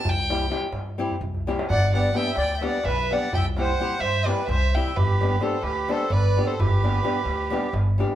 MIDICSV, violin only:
0, 0, Header, 1, 2, 480
1, 0, Start_track
1, 0, Key_signature, 1, "major"
1, 0, Tempo, 466563
1, 53, Time_signature, 7, 3, 24, 8
1, 8385, End_track
2, 0, Start_track
2, 0, Title_t, "Violin"
2, 0, Program_c, 0, 40
2, 0, Note_on_c, 0, 81, 98
2, 94, Note_on_c, 0, 79, 95
2, 110, Note_off_c, 0, 81, 0
2, 543, Note_off_c, 0, 79, 0
2, 1753, Note_on_c, 0, 78, 108
2, 1983, Note_off_c, 0, 78, 0
2, 2006, Note_on_c, 0, 78, 85
2, 2226, Note_on_c, 0, 79, 96
2, 2241, Note_off_c, 0, 78, 0
2, 2423, Note_off_c, 0, 79, 0
2, 2430, Note_on_c, 0, 79, 102
2, 2620, Note_off_c, 0, 79, 0
2, 2620, Note_on_c, 0, 79, 55
2, 2701, Note_on_c, 0, 78, 83
2, 2717, Note_off_c, 0, 79, 0
2, 2932, Note_on_c, 0, 76, 93
2, 2948, Note_off_c, 0, 78, 0
2, 3215, Note_on_c, 0, 78, 93
2, 3230, Note_off_c, 0, 76, 0
2, 3432, Note_off_c, 0, 78, 0
2, 3441, Note_on_c, 0, 79, 106
2, 3551, Note_off_c, 0, 79, 0
2, 3697, Note_on_c, 0, 78, 90
2, 4120, Note_on_c, 0, 76, 104
2, 4135, Note_off_c, 0, 78, 0
2, 4385, Note_on_c, 0, 74, 85
2, 4401, Note_off_c, 0, 76, 0
2, 4608, Note_off_c, 0, 74, 0
2, 4615, Note_on_c, 0, 76, 108
2, 4885, Note_on_c, 0, 79, 92
2, 4900, Note_off_c, 0, 76, 0
2, 5104, Note_on_c, 0, 71, 86
2, 5119, Note_off_c, 0, 79, 0
2, 5573, Note_on_c, 0, 72, 78
2, 5589, Note_off_c, 0, 71, 0
2, 5794, Note_on_c, 0, 71, 87
2, 5809, Note_off_c, 0, 72, 0
2, 6081, Note_on_c, 0, 72, 83
2, 6097, Note_off_c, 0, 71, 0
2, 6296, Note_on_c, 0, 74, 93
2, 6311, Note_off_c, 0, 72, 0
2, 6659, Note_on_c, 0, 72, 79
2, 6674, Note_off_c, 0, 74, 0
2, 6789, Note_on_c, 0, 71, 82
2, 6804, Note_off_c, 0, 72, 0
2, 7959, Note_off_c, 0, 71, 0
2, 8385, End_track
0, 0, End_of_file